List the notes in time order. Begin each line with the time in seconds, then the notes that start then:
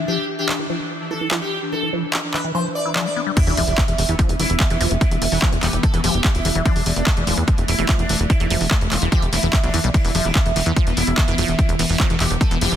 Already playing: E3 D4
0.08 F3 G4
0.18 E3
0.39 G4
0.49 E3, clap
0.59 E3
0.70 F3
0.80 E3
1.11 E3 A4
1.21 E3
1.31 F3, clap
1.42 E3 G4
1.72 E3 A4
1.83 E3
1.93 F3
2.03 E3
2.13 clap
2.34 E3 B4, clap
2.44 E3
2.55 F3 C5
2.65 E3
2.75 D5
2.85 E4
2.96 F3, clap
3.06 B3 D5
3.16 B3
3.27 G3
3.37 E3 B3 E4, kick, closed hi-hat, crash, sub drop
3.47 E1 E3, open hi-hat
3.57 E1 F3, open hi-hat
3.68 E1 E3 E4, closed hi-hat
3.78 kick, clap, closed hi-hat
3.88 E1, closed hi-hat
3.98 E1 E3, open hi-hat
4.09 E2 E3, closed hi-hat
4.19 F3, kick, closed hi-hat
4.29 E1 E3, closed hi-hat
4.39 E1 E4, open hi-hat
4.50 E1, closed hi-hat
4.60 E3, kick, clap, closed hi-hat
4.70 E1 E3 E4, closed hi-hat
4.81 E1 F3, open hi-hat
4.91 E1 E3, closed hi-hat
5.01 E4, kick, closed hi-hat
5.11 E1, closed hi-hat
5.22 E1 E3, open hi-hat
5.32 E1 E3, open hi-hat
5.42 F3, kick, clap
5.52 E1 E3, closed hi-hat
5.63 E1 G4, clap, open hi-hat
5.73 E1, closed hi-hat
5.83 E3 A4, kick, closed hi-hat
5.94 E1 E3, closed hi-hat
6.04 E1 F3 G4, open hi-hat
6.14 E1 E3, closed hi-hat
6.24 kick, clap, closed hi-hat
6.35 D1 E4, closed hi-hat
6.45 E1 E3, open hi-hat
6.55 E1 E3, closed hi-hat
6.65 F3 A3 D4, kick, closed hi-hat
6.76 E1 E3, open hi-hat
6.86 E1, open hi-hat
6.96 E1 D4, closed hi-hat
7.07 E3, kick, clap, closed hi-hat
7.17 E1 E3, closed hi-hat
7.27 E1 F3, open hi-hat
7.37 E2 E3, closed hi-hat
7.48 kick, closed hi-hat
7.58 E1, closed hi-hat
7.68 E1 E3 E4, open hi-hat
7.79 E1 E3, closed hi-hat
7.89 F3, kick, clap, closed hi-hat
7.99 E1 E3 D4, closed hi-hat
8.09 E1, open hi-hat
8.20 E1, closed hi-hat
8.30 E3 E4, kick, closed hi-hat
8.40 E1 E3, closed hi-hat
8.50 E1 F3, open hi-hat
8.61 E1 E3, open hi-hat
8.71 kick, clap
8.81 E1, closed hi-hat
8.92 E1 E3 F4, clap, open hi-hat
9.02 E1 E3, closed hi-hat
9.12 F3 G4, kick, closed hi-hat
9.22 E1 E3, closed hi-hat
9.33 E1 E3 E4, open hi-hat
9.43 E1 E3, closed hi-hat
9.53 G3, kick, clap, closed hi-hat
9.63 B1 D4, closed hi-hat
9.74 E2 E3, open hi-hat
9.84 B1 G3, closed hi-hat
9.94 E3 B3 E4, kick, closed hi-hat
10.05 E1 E3, open hi-hat
10.15 E1 F3, open hi-hat
10.25 E1 E3 E4, closed hi-hat
10.35 kick, clap, closed hi-hat
10.46 E1, closed hi-hat
10.56 E1 E3, open hi-hat
10.66 E2 E3, closed hi-hat
10.76 F3, kick, closed hi-hat
10.87 E1 E3, closed hi-hat
10.97 E1 E4, open hi-hat
11.07 E1, closed hi-hat
11.18 E3, kick, clap, closed hi-hat
11.28 E1 E3 E4, closed hi-hat
11.38 E1 F3, open hi-hat
11.48 E1 E3, closed hi-hat
11.59 E4, kick, closed hi-hat
11.69 E1, closed hi-hat
11.79 E1 E3, open hi-hat
11.89 E1 E3, open hi-hat
12.00 F3, kick, clap
12.10 E1 E3, closed hi-hat
12.20 E1 G4, clap, open hi-hat
12.31 E1, closed hi-hat
12.41 E3 A4, kick, closed hi-hat
12.51 E1 E3, closed hi-hat
12.61 E1 F3 G4, open hi-hat
12.72 E1 E3, closed hi-hat